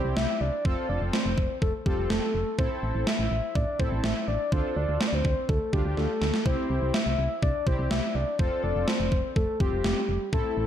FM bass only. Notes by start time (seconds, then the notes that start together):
0.05 C2
0.17 C2
0.41 C2
0.65 F1
0.89 F1
1.01 F1
1.25 F1
1.38 F1
1.62 F1
1.86 F1
1.98 F1
2.10 F1
2.34 F1
2.59 A1
2.83 A1
2.95 A1
3.19 A1
3.31 A1
3.55 A1
3.80 A1
3.92 A1
4.04 A1
4.28 A1
4.52 D2
4.76 D2
4.88 D2
5.13 D2
5.25 D2
5.49 D2
5.73 D2
5.85 D2
5.97 D2
6.22 D2
6.46 C2
6.70 C2
6.82 C2
7.06 C2
7.18 C2
7.43 C2
7.67 C2
7.79 C2
7.91 C2
8.15 C2
8.39 F1
8.63 F1
8.76 F1
9.00 F1
9.12 F1
9.36 F1
9.60 F1
9.72 F1
9.84 F1
10.09 F1
10.33 A1
10.57 A1